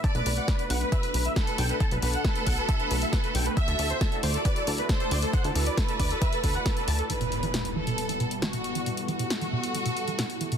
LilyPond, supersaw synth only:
\new Staff \with { instrumentName = "Supersaw synth" } { \time 4/4 \key e \minor \tempo 4 = 136 a''16 b'16 b'16 fis''16 b'16 b'16 fis''16 b'16 e''16 b'16 b'16 e''16 b'16 b'16 g''16 b'16 | a''16 b'16 b'16 fis''16 b'16 b'16 fis''16 b'16 e''16 b'16 b'16 e''16 b'16 b'16 g''16 b'16 | e''16 a'16 a'16 c''16 a'16 a'16 c''16 a'16 b'16 a'16 a'16 b'16 a'16 a'16 d''16 a'16 | fis''16 a'16 a'16 d''16 a'16 a'16 d''16 a'16 e''16 a'16 a'16 fis''16 a'16 a'16 a''16 a'16 |
r1 | r1 | }